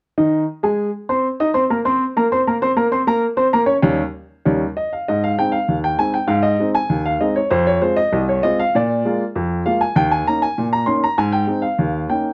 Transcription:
upright piano
0.18 D#3 D#4 D#5
0.63 G#3 G#4 G#5
1.09 C4 C5 C6
1.40 D#4 D#5 D#6
1.54 C4 C5 C6
1.70 A#3 A#4 A#5
1.85 C4 C5 C6
2.17 A#3 A#4 A#5
2.32 C4 C5 C6
2.47 A#3 A#4 A#5
2.62 C4 C5 C6
2.76 A#3 A#4 A#5
2.91 C4 C5 C6
3.07 A#3 A#4 A#5
3.37 C4 C5 C6
3.53 A#3 A#4 A#5
3.66 C#4 C#5 C#6
3.82 D#2 G3 C#4 D#4
4.45 D#2 G3 C#4 D#4
4.77 D#5
4.93 F5
5.08 G#2 D#5
5.24 F5
5.39 G#3 C4 D#4 G5
5.52 F5
5.68 D#2
5.84 G5
5.99 G#3 C4 D#4 G#5
6.14 G5
6.28 G#2 F5
6.43 D#5
6.59 G#3 C4 D#4
6.75 G#5
6.90 D#2
7.06 F5
7.21 G#3 C4 D#4 D#5
7.36 C#5
7.51 F2 C5
7.67 C#5
7.82 G#3 C4 F4 C5
7.97 D#5
8.13 C2
8.29 C#5
8.43 G#3 C4 F4 D#5
8.59 F5
8.75 A#2 D5
9.05 G#3 A#3 F4
9.35 F2
9.65 G#3 A#3 F4 F5
9.81 G#5
9.96 D#2 G5
10.11 G#5
10.27 A#3 C#4 D#4 A#5
10.42 G#5
10.58 A#2
10.73 A#5
10.86 A#3 C#4 D#4 C6
11.04 A#5
11.18 G#2 G#5
11.33 G5
11.47 G#3 C4 D#4
11.62 F5
11.79 D#2
12.10 A#3 C#4 D#4 G5

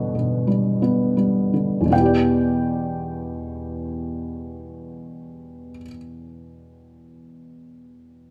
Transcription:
felt piano
Already playing: E2 B2 D3 G3 B3 B4 E5
0.15 B2
0.47 G3
0.82 B3
1.17 G3
1.54 D3
1.81 E2
1.85 B2
1.90 B3 G5
1.96 E4
2.00 G4
2.06 D5

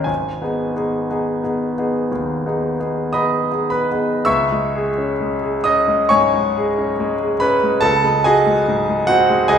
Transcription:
grand piano
Already playing: D#2 C#4 D#4 A#4 G5
0.04 G#1 G#5
0.42 B3 D#4 G#4
0.76 B3 D#4 G#4
1.10 B3 D#4 G#4
1.44 B3 D#4 G#4
1.78 B3 D#4 G#4
2.12 D#2
2.46 B3 D#4 G#4
2.80 B3 D#4 G#4
3.13 B3 D#4 G#4 D#5 B5 D#6
3.52 B3 D#4 G#4
3.70 B4 B5
3.91 B3 D#4 G#4
4.25 C#2 E5 C#6 E6
4.52 G#3
4.76 G#4
4.98 C#4
5.21 G#3
5.43 G#4
5.64 C#4 D#5 D#6
5.88 G#3
6.09 G#2 C#5 G#5 C#6
6.34 G#3
6.58 G#4
6.78 C#4
7.00 G#3
7.22 G#4
7.40 C#4 B4 B5
7.63 G#3
7.81 C#2 A4 A5
8.04 G#3
8.24 F#4 G#4 D#5 G#5
8.47 G#3
8.68 G#2
8.89 G#3
9.07 C4 F#4 F#5
9.30 G#3
9.48 C#2 G#4 D#5 G#5

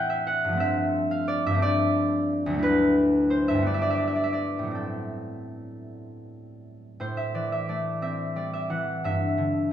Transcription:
harp
Already playing: A2 E3 A3 C4 C5 G5
0.10 E5
0.27 F#5
0.45 G2 F3
0.53 A3
0.57 C4 E5
1.11 F5
1.28 D5
1.46 G2 E5
1.50 F3 A3
1.58 C4 D5
2.46 D2
2.50 F#3
2.54 A3
2.59 E4
2.63 B4
3.30 C5
3.48 G2 E5
3.54 G3
3.58 A3 B3
3.67 D5
3.74 E5
3.82 D5
3.90 E5
3.98 D5
4.07 E5
4.16 D5
4.24 E5
4.33 D5
4.59 A2
4.63 F#3 A3
4.71 C4 A4
7.00 A2 C5
7.17 E5
7.34 E3 D5
7.52 E5
7.69 A3 D5
8.02 C4 E5
8.36 G3 D5
8.54 E5
8.70 E3 F#5
9.04 G2 E5
9.38 D3

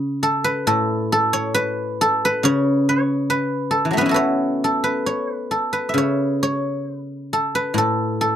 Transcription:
guzheng
Already playing: C#3 A4 B4 C#5
0.23 A4
0.44 B4
0.67 A2 A4
1.12 A4
1.33 C#5
1.54 B4
2.01 A4
2.25 B4
2.43 C#3 C#5
2.89 C#5
3.30 B4
3.71 A4
3.85 E3
3.91 F#3 A3
3.97 B3 C#4 B4
4.06 E4 F#4
4.11 A4 B4
4.16 C#5
4.64 A4
4.84 B4
5.06 C#5
5.32 B4
5.51 A4
5.73 B4
5.89 E5
5.94 C#3 C#5
6.43 C#5
6.97 B4
7.33 A4
7.55 B4
7.74 A2 A4
8.21 A4

